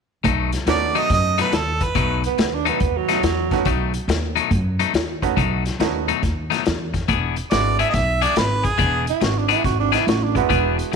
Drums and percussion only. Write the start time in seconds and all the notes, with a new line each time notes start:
0.24 kick, closed hi-hat
0.52 snare, closed hi-hat
0.67 snare, closed hi-hat
0.95 closed hi-hat
1.10 kick, snare, closed hi-hat
1.38 snare, closed hi-hat
1.52 snare, closed hi-hat
1.81 kick, closed hi-hat
1.95 kick, closed hi-hat
2.24 closed hi-hat
2.38 snare, closed hi-hat
2.66 closed hi-hat
2.80 kick, closed hi-hat
3.08 snare, closed hi-hat
3.23 snare, closed hi-hat
3.51 kick, snare, closed hi-hat
3.65 kick, closed hi-hat
3.94 closed hi-hat
4.09 snare, closed hi-hat
4.37 closed hi-hat
4.51 kick, closed hi-hat
4.80 closed hi-hat
4.94 snare, closed hi-hat
5.22 kick, closed hi-hat
5.37 kick, closed hi-hat
5.66 snare, closed hi-hat
5.80 snare, closed hi-hat
6.08 closed hi-hat
6.23 kick, snare, closed hi-hat
6.52 snare, closed hi-hat
6.66 snare, closed hi-hat
6.94 kick, snare, closed hi-hat
7.08 kick, closed hi-hat
7.36 closed hi-hat
7.51 snare, closed hi-hat
7.79 closed hi-hat
7.94 kick, snare, closed hi-hat
8.22 closed hi-hat
8.36 snare, closed hi-hat
8.65 kick, closed hi-hat
8.79 kick, closed hi-hat
9.07 closed hi-hat
9.21 snare, closed hi-hat
9.50 closed hi-hat
9.64 kick, snare, closed hi-hat
9.94 snare, closed hi-hat
10.08 snare, closed hi-hat
10.36 kick, closed hi-hat
10.50 kick, closed hi-hat
10.79 closed hi-hat